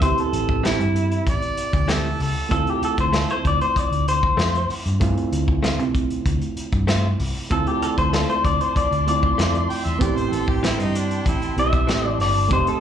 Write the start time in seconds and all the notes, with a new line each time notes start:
Already playing: D2
0.01 B3 C4 E4 G4 C5, kick, closed hi-hat
0.18 A4, closed hi-hat
0.33 A1, closed hi-hat
0.49 kick
0.63 E3 A3 C4 E4 G4, snare, closed hi-hat
0.79 G2, closed hi-hat
0.96 closed hi-hat
1.12 closed hi-hat
1.26 A1 D5, kick, closed hi-hat
1.42 closed hi-hat
1.57 muted fingered electric bass stroke, closed hi-hat
1.73 D2, kick, closed hi-hat
1.88 E3 A3 C4 G4 A4, snare, closed hi-hat
2.20 C#2 A4, open hi-hat
2.49 D2 A3 C4 E4 F4 A4, kick, closed hi-hat
2.67 G4, closed hi-hat
2.82 A4, muted fingered electric bass stroke, closed hi-hat
2.98 D2 C5, kick, closed hi-hat
3.13 A3 C4 F4 A4, snare, closed hi-hat
3.30 C5, closed hi-hat
3.45 D2 D5, kick, closed hi-hat
3.61 C5, closed hi-hat
3.76 D5, muted fingered electric bass stroke, kick, closed hi-hat
3.91 D2, closed hi-hat
4.08 C5, closed hi-hat
4.23 kick
4.37 F2 A3 C4 F4, snare, closed hi-hat
4.55 closed hi-hat
4.70 muted fingered electric bass stroke, open hi-hat
4.86 G2, closed hi-hat
5.00 A3 C4 E4 F4, kick, closed hi-hat
5.17 closed hi-hat
5.32 D2, closed hi-hat
5.48 kick
5.63 A3 C4 F4, snare, closed hi-hat
5.79 C3, closed hi-hat
5.95 kick, closed hi-hat
6.10 closed hi-hat
6.26 D2, kick, closed hi-hat
6.42 closed hi-hat
6.57 muted fingered electric bass stroke, closed hi-hat
6.72 G2, kick, closed hi-hat
6.87 A3 C4 F4, snare, closed hi-hat
7.20 C2, open hi-hat
7.50 D2 A3 C4 E4 F4 A4 D5 A5 C6, kick, closed hi-hat
7.67 G4, closed hi-hat
7.82 A4, muted fingered electric bass stroke, closed hi-hat
7.98 D2 C5, kick, closed hi-hat
8.13 A3 C4 F4 A4, snare, closed hi-hat
8.29 C5, closed hi-hat
8.44 D2 D5, kick, closed hi-hat
8.61 C5, closed hi-hat
8.76 D5, muted fingered electric bass stroke, kick, closed hi-hat
8.91 D2, closed hi-hat
9.07 A3 C4 E4 F4 D5, closed hi-hat
9.23 kick
9.38 F2 A3 C4 F4, snare, closed hi-hat
9.55 closed hi-hat
9.70 G5, muted fingered electric bass stroke, open hi-hat
9.86 E2 E5, closed hi-hat
9.99 A1 B3 C4 E4 G4 D5 G5 A5, kick, closed hi-hat
10.16 C5, closed hi-hat
10.32 A1 A4, closed hi-hat
10.48 G4, kick
10.63 E3 A3 C4 E4 G4, snare, closed hi-hat
10.79 G2 D#4, closed hi-hat
10.95 D4, closed hi-hat
11.11 closed hi-hat
11.26 A1 E4, kick, closed hi-hat
11.42 closed hi-hat
11.56 B1 B3 C4 E4 G4 E5, closed hi-hat
11.73 kick, closed hi-hat
11.87 A1 E3 A3 C4 G4, snare, closed hi-hat
12.07 D5
12.18 G1 D5, snare, open hi-hat
12.48 F1 A3 C4 D#4 G4 F5 D#6, kick, closed hi-hat
12.53 C5
12.67 A4, closed hi-hat